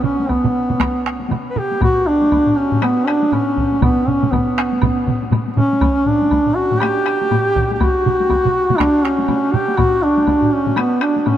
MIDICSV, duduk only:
0, 0, Header, 1, 2, 480
1, 0, Start_track
1, 0, Tempo, 502092
1, 1730, Time_signature, 4, 2, 24, 8
1, 5561, Tempo, 494234
1, 10959, End_track
2, 0, Start_track
2, 0, Title_t, "Duduk"
2, 0, Program_c, 0, 69
2, 40, Note_on_c, 0, 61, 66
2, 284, Note_on_c, 0, 59, 66
2, 299, Note_off_c, 0, 61, 0
2, 1249, Note_off_c, 0, 59, 0
2, 1437, Note_on_c, 0, 71, 60
2, 1512, Note_on_c, 0, 67, 85
2, 1526, Note_off_c, 0, 71, 0
2, 1741, Note_off_c, 0, 67, 0
2, 1752, Note_on_c, 0, 66, 91
2, 1979, Note_on_c, 0, 62, 81
2, 1993, Note_off_c, 0, 66, 0
2, 2455, Note_on_c, 0, 61, 76
2, 2470, Note_off_c, 0, 62, 0
2, 2709, Note_on_c, 0, 59, 78
2, 2723, Note_off_c, 0, 61, 0
2, 2931, Note_on_c, 0, 62, 74
2, 2946, Note_off_c, 0, 59, 0
2, 3178, Note_on_c, 0, 61, 75
2, 3192, Note_off_c, 0, 62, 0
2, 3654, Note_off_c, 0, 61, 0
2, 3661, Note_on_c, 0, 59, 76
2, 3897, Note_on_c, 0, 61, 69
2, 3911, Note_off_c, 0, 59, 0
2, 4124, Note_on_c, 0, 59, 61
2, 4138, Note_off_c, 0, 61, 0
2, 5082, Note_off_c, 0, 59, 0
2, 5318, Note_on_c, 0, 61, 79
2, 5805, Note_on_c, 0, 62, 74
2, 5820, Note_off_c, 0, 61, 0
2, 6281, Note_on_c, 0, 66, 83
2, 6296, Note_off_c, 0, 62, 0
2, 6517, Note_on_c, 0, 67, 91
2, 6532, Note_off_c, 0, 66, 0
2, 7425, Note_off_c, 0, 67, 0
2, 7431, Note_on_c, 0, 67, 61
2, 7501, Note_on_c, 0, 66, 91
2, 7516, Note_off_c, 0, 67, 0
2, 8443, Note_on_c, 0, 62, 82
2, 8457, Note_off_c, 0, 66, 0
2, 8687, Note_on_c, 0, 61, 75
2, 8702, Note_off_c, 0, 62, 0
2, 9171, Note_on_c, 0, 67, 81
2, 9186, Note_off_c, 0, 61, 0
2, 9402, Note_on_c, 0, 66, 90
2, 9417, Note_off_c, 0, 67, 0
2, 9653, Note_on_c, 0, 62, 77
2, 9668, Note_off_c, 0, 66, 0
2, 10136, Note_on_c, 0, 61, 75
2, 10150, Note_off_c, 0, 62, 0
2, 10370, Note_off_c, 0, 61, 0
2, 10380, Note_on_c, 0, 59, 74
2, 10611, Note_on_c, 0, 62, 69
2, 10625, Note_off_c, 0, 59, 0
2, 10792, Note_off_c, 0, 62, 0
2, 10792, Note_on_c, 0, 62, 54
2, 10858, Note_on_c, 0, 61, 75
2, 10872, Note_off_c, 0, 62, 0
2, 10959, Note_off_c, 0, 61, 0
2, 10959, End_track
0, 0, End_of_file